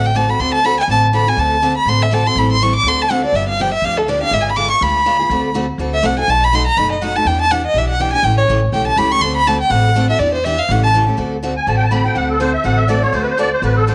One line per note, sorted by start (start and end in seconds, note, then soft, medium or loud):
0.00 0.30 A1 medium
0.06 0.18 G5 medium
0.15 0.25 D3 medium
0.15 0.26 A3 medium
0.15 0.26 C4 medium
0.15 0.26 F#4 medium
0.15 0.26 A4 medium
0.15 0.31 A5 medium
0.28 0.39 C4 soft
0.28 0.39 F#4 medium
0.28 0.39 A4 medium
0.28 0.41 B5 medium
0.39 0.79 D2 medium
0.39 0.58 D3 medium
0.39 0.58 A3 medium
0.39 0.58 C4 medium
0.39 0.58 F#4 medium
0.39 0.58 A4 medium
0.39 0.53 C6 loud
0.54 0.66 A5 medium
0.64 0.75 D3 medium
0.64 0.75 A3 medium
0.64 0.75 C4 medium
0.64 0.75 F#4 medium
0.64 0.75 A4 medium
0.64 0.79 B5 loud
0.80 0.89 G#5 medium
0.88 1.28 A1 medium
0.88 1.07 D3 medium
0.88 1.07 A3 medium
0.88 1.07 C4 medium
0.88 1.07 F#4 medium
0.88 1.07 A4 medium
0.88 0.99 A5 loud
1.13 1.24 D3 medium
1.13 1.24 A3 medium
1.13 1.24 C4 medium
1.13 1.24 F#4 medium
1.13 1.24 A4 medium
1.13 1.30 B5 medium
1.26 1.37 C4 soft
1.26 1.37 F#4 soft
1.26 1.37 A4 medium
1.26 1.41 G#5 medium
1.36 1.77 D2 medium
1.36 1.55 D3 medium
1.36 1.56 A3 medium
1.36 1.56 C4 medium
1.36 1.56 F#4 medium
1.36 1.56 A4 medium
1.36 1.77 A5 medium
1.62 1.73 D3 medium
1.62 1.73 A3 medium
1.62 1.73 C4 medium
1.62 1.73 F#4 medium
1.62 1.73 A4 loud
1.77 1.91 B5 medium
1.85 2.26 A1 medium
1.85 2.05 D3 medium
1.85 2.05 A3 medium
1.85 2.06 C4 medium
1.85 2.06 F#4 medium
1.85 2.06 A4 medium
1.85 2.04 C6 loud
2.02 2.15 E5 medium
2.11 2.22 D3 medium
2.11 2.22 A3 medium
2.11 2.22 C4 medium
2.11 2.22 F#4 medium
2.11 2.23 A4 medium
2.11 2.28 A5 medium
2.26 2.36 C4 soft
2.26 2.37 F#4 medium
2.26 2.36 A4 medium
2.26 2.40 C6 loud
2.35 2.75 A1 medium
2.35 2.55 E3 medium
2.35 2.55 G3 medium
2.35 2.55 C4 medium
2.35 2.55 E4 medium
2.35 2.55 A4 medium
2.35 2.51 B5 medium
2.52 2.64 C6 loud
2.61 2.71 E3 medium
2.61 2.71 G3 medium
2.61 2.72 C4 medium
2.61 2.72 E4 medium
2.61 2.72 A4 loud
2.61 2.75 C#6 medium
2.76 2.90 D6 loud
2.83 3.24 D2 medium
2.83 3.04 D3 medium
2.83 3.04 A3 medium
2.83 3.04 C4 medium
2.83 3.04 F#4 medium
2.83 3.04 A4 medium
2.88 3.03 C6 medium
3.02 3.12 A5 medium
3.10 3.20 D3 medium
3.10 3.20 A3 medium
3.10 3.20 C4 medium
3.10 3.20 F#4 medium
3.10 3.21 A4 medium
3.10 3.24 F#5 medium
3.23 3.35 C4 soft
3.23 3.34 F#4 medium
3.23 3.34 A4 medium
3.23 3.37 D5 medium
3.33 3.73 G1 medium
3.33 3.52 D3 medium
3.33 3.52 F3 medium
3.33 3.53 B3 medium
3.33 3.53 D4 medium
3.33 3.53 G4 medium
3.33 3.48 E5 medium
3.49 3.63 F5 medium
3.59 3.69 D3 medium
3.59 3.69 F3 medium
3.59 3.70 B3 medium
3.59 3.70 D4 medium
3.59 3.70 G4 loud
3.59 3.73 G5 medium
3.74 3.86 E5 medium
3.82 4.22 D2 medium
3.82 4.02 D3 medium
3.82 4.02 F3 medium
3.82 4.02 B3 medium
3.82 4.02 D4 medium
3.82 4.03 G4 medium
3.82 3.99 F5 loud
3.98 4.10 A4 medium
4.08 4.18 D3 medium
4.08 4.18 F3 medium
4.08 4.19 B3 loud
4.08 4.19 D4 medium
4.08 4.19 G4 loud
4.08 4.22 D5 medium
4.21 4.31 B3 soft
4.21 4.32 D4 medium
4.21 4.32 G4 medium
4.21 4.35 F5 loud
4.31 4.71 G#1 medium
4.31 4.50 D3 medium
4.31 4.50 G#3 medium
4.31 4.51 B3 medium
4.31 4.51 F4 medium
4.31 4.51 G#4 medium
4.31 4.43 E5 medium
4.41 4.51 G#5 medium
4.49 4.58 B5 medium
4.56 4.67 D3 medium
4.56 4.67 G#3 medium
4.56 4.67 B3 medium
4.56 4.67 F4 medium
4.56 4.67 G#4 medium
4.56 4.70 D6 loud
4.71 4.84 C#6 loud
4.81 5.21 D2 medium
4.81 4.99 D3 medium
4.81 4.99 G#3 medium
4.81 4.99 B3 medium
4.81 5.00 F4 medium
4.81 5.00 G#4 medium
4.81 5.56 B5 medium
5.06 5.16 D3 medium
5.06 5.16 G#3 medium
5.06 5.16 B3 medium
5.06 5.16 F4 medium
5.06 5.16 G#4 medium
5.19 5.30 B3 soft
5.19 5.30 F4 soft
5.19 5.30 G#4 medium
5.30 5.69 D2 medium
5.30 5.48 D3 medium
5.30 5.49 A3 medium
5.30 5.49 C4 medium
5.30 5.49 F#4 medium
5.30 5.49 A4 medium
5.54 5.65 D3 medium
5.54 5.65 A3 medium
5.54 5.65 C4 medium
5.54 5.65 F#4 medium
5.54 5.66 A4 loud
5.78 6.00 D2 medium
5.78 5.97 D3 medium
5.78 5.97 A3 medium
5.78 5.97 C4 medium
5.78 5.98 F#4 medium
5.78 5.98 A4 medium
5.94 6.07 E5 loud
6.02 6.25 C2 medium
6.02 6.13 D3 medium
6.02 6.13 A3 loud
6.02 6.14 C4 loud
6.02 6.14 F#4 medium
6.02 6.14 A4 loud
6.02 6.19 F#5 medium
6.17 6.28 C4 soft
6.17 6.28 F#4 medium
6.17 6.28 A4 medium
6.17 6.31 G#5 loud
6.27 6.67 B1 medium
6.27 6.46 B2 medium
6.27 6.46 F#3 medium
6.27 6.46 A3 medium
6.27 6.46 D#4 medium
6.27 6.47 F#4 medium
6.27 6.46 A5 medium
6.44 6.56 B5 loud
6.53 6.63 B2 medium
6.53 6.63 F#3 loud
6.53 6.63 A3 medium
6.53 6.63 D#4 medium
6.53 6.63 F#4 loud
6.53 6.66 C6 loud
6.67 6.79 A#5 loud
6.77 7.16 F#1 medium
6.77 6.95 B2 medium
6.77 6.96 F#3 medium
6.77 6.96 A3 medium
6.77 6.96 D#4 medium
6.77 6.96 F#4 medium
6.77 6.91 B5 loud
6.92 7.03 D#5 medium
7.02 7.12 B2 medium
7.02 7.12 F#3 medium
7.02 7.12 A3 loud
7.02 7.12 D#4 loud
7.02 7.13 F#4 loud
7.02 7.17 F#5 medium
7.16 7.26 A3 soft
7.16 7.27 D#4 soft
7.16 7.26 F#4 medium
7.16 7.28 A5 loud
7.25 7.65 E2 medium
7.25 7.44 E3 medium
7.25 7.45 B3 medium
7.25 7.45 D4 medium
7.25 7.45 G4 medium
7.25 7.40 G5 medium
7.41 7.53 A5 loud
7.51 7.61 E3 medium
7.51 7.61 B3 medium
7.51 7.61 D4 medium
7.51 7.61 G4 loud
7.51 7.65 F#5 medium
7.66 7.79 D#5 loud
7.74 8.14 B1 medium
7.74 7.93 E3 medium
7.74 7.93 B3 medium
7.74 7.93 D4 medium
7.74 7.93 G4 medium
7.78 7.89 E5 medium
7.90 8.02 F#5 medium
8.00 8.10 E3 medium
8.00 8.10 B3 medium
8.00 8.10 D4 medium
8.00 8.10 G4 medium
8.00 8.12 G5 medium
8.13 8.24 B3 medium
8.13 8.24 D4 medium
8.13 8.24 G4 medium
8.13 8.26 G#5 loud
8.23 8.43 A1 medium
8.23 8.42 C#3 medium
8.23 8.42 E3 medium
8.23 8.42 A3 medium
8.23 8.43 C#4 medium
8.23 8.43 G4 medium
8.23 8.37 G5 medium
8.38 8.44 C#5 medium
8.48 8.69 A1 medium
8.48 8.59 C#3 medium
8.48 8.59 E3 medium
8.48 8.59 A3 loud
8.48 8.59 C#4 loud
8.48 8.60 G4 loud
8.72 8.94 B1 medium
8.72 8.91 C#3 medium
8.72 8.91 E3 medium
8.72 8.92 A3 medium
8.72 8.92 C#4 medium
8.72 8.92 G4 medium
8.72 8.86 G5 medium
8.87 9.00 A5 medium
8.96 9.18 C#2 medium
8.96 9.08 C#3 medium
8.96 9.08 E3 medium
8.96 9.08 A3 medium
8.96 9.08 C#4 loud
8.96 9.08 G4 loud
8.96 9.13 B5 medium
9.11 9.21 A3 soft
9.11 9.22 C#4 medium
9.11 9.22 G4 medium
9.11 9.23 C#6 loud
9.21 9.61 D2 medium
9.21 9.40 D3 medium
9.21 9.40 A3 medium
9.21 9.40 C4 medium
9.21 9.40 F#4 medium
9.21 9.40 A4 medium
9.21 9.35 C6 medium
9.36 9.49 B5 loud
9.47 9.57 D3 loud
9.47 9.57 A3 loud
9.47 9.57 C4 loud
9.47 9.57 F#4 loud
9.47 9.57 A4 loud
9.47 9.60 A5 loud
9.61 9.72 G5 loud
9.70 10.10 A1 medium
9.70 9.89 D3 medium
9.70 9.89 A3 medium
9.70 9.89 C4 medium
9.70 9.89 F#4 medium
9.70 9.89 A4 medium
9.70 10.09 F#5 loud
9.95 10.05 D3 medium
9.95 10.06 A3 medium
9.95 10.06 C4 loud
9.95 10.06 F#4 loud
9.95 10.06 A4 loud
10.10 10.20 C4 soft
10.10 10.20 F#4 medium
10.10 10.20 A4 medium
10.10 10.21 E5 medium
10.19 10.59 E2 medium
10.19 10.38 E3 medium
10.19 10.38 B3 medium
10.19 10.38 D4 medium
10.19 10.38 G4 medium
10.19 10.33 D5 medium
10.34 10.46 C5 medium
10.44 10.55 E3 medium
10.44 10.55 B3 medium
10.44 10.55 D4 medium
10.44 10.55 G4 loud
10.44 10.60 E5 medium
10.59 10.73 F5 loud
10.69 11.08 A1 medium
10.69 10.87 C#3 medium
10.69 10.87 E3 medium
10.69 10.88 A3 medium
10.69 10.88 C#4 medium
10.69 10.88 G4 medium
10.69 10.83 F#5 medium
10.83 10.90 A5 loud
10.94 11.04 C#3 medium
10.94 11.04 E3 medium
10.94 11.04 A3 medium
10.94 11.04 C#4 loud
10.94 11.04 G4 loud
11.07 11.16 A3 medium
11.07 11.17 C#4 medium
11.07 11.17 G4 medium
11.17 11.57 D2 medium
11.17 11.35 D3 medium
11.17 11.35 A3 medium
11.17 11.36 C4 medium
11.17 11.36 F#4 medium
11.17 11.36 A4 medium
11.43 11.53 D3 medium
11.43 11.53 A3 medium
11.43 11.53 C4 medium
11.43 11.53 F#4 medium
11.43 11.53 A4 loud
11.56 11.67 G#5 medium
11.67 12.06 A1 medium
11.67 11.85 D3 medium
11.67 11.85 A3 medium
11.67 11.85 C4 medium
11.67 11.85 F#4 medium
11.67 11.85 A4 medium
11.67 11.75 A5 medium
11.77 11.84 G5 medium
11.84 11.92 A5 medium
11.91 12.01 D3 medium
11.91 12.02 A3 medium
11.91 12.02 C4 medium
11.91 12.02 F#4 medium
11.91 12.02 A4 medium
11.91 12.05 B5 medium
12.04 12.14 C4 soft
12.04 12.15 F#4 medium
12.04 12.15 A4 medium
12.04 12.16 G5 medium
12.15 12.55 D2 medium
12.15 12.33 D3 medium
12.15 12.33 A3 medium
12.15 12.34 C4 medium
12.15 12.34 F#4 medium
12.15 12.34 A4 medium
12.15 12.29 F#5 medium
12.30 12.40 A4 medium
12.40 12.50 D3 medium
12.40 12.50 A3 medium
12.40 12.50 C4 medium
12.40 12.51 F#4 medium
12.40 12.51 A4 loud
12.40 12.53 C5 medium
12.53 12.64 E5 medium
12.64 13.04 A1 medium
12.64 12.82 D3 medium
12.64 12.82 A3 medium
12.64 12.82 C4 medium
12.64 12.83 F#4 medium
12.64 12.83 A4 medium
12.64 12.78 F#5 medium
12.77 12.88 E5 medium
12.88 12.99 D3 medium
12.88 12.99 A3 medium
12.88 12.99 C4 medium
12.88 12.99 F#4 medium
12.88 13.00 A4 loud
12.88 13.02 D5 medium
13.02 13.12 C4 medium
13.02 13.12 F#4 medium
13.02 13.13 A4 medium
13.02 13.13 C#5 medium
13.12 13.52 D2 medium
13.12 13.31 D3 medium
13.12 13.31 A3 medium
13.12 13.31 C4 medium
13.12 13.32 F#4 medium
13.12 13.32 A4 medium
13.12 13.22 C5 medium
13.22 13.30 B4 medium
13.30 13.38 C5 medium
13.38 13.48 D3 medium
13.38 13.48 A3 medium
13.38 13.49 C4 loud
13.38 13.49 F#4 medium
13.38 13.49 A4 loud
13.38 13.52 D5 loud
13.53 13.63 C5 medium
13.62 13.95 A1 medium
13.62 13.80 D3 medium
13.62 13.81 A3 medium
13.62 13.81 C4 medium
13.62 13.81 F#4 medium
13.62 13.81 A4 medium
13.62 13.77 B4 medium
13.77 13.87 A4 medium
13.87 13.95 D3 medium
13.87 13.95 A3 medium
13.87 13.95 C4 medium
13.87 13.95 F#4 medium
13.87 13.95 A4 medium
13.87 13.95 C5 medium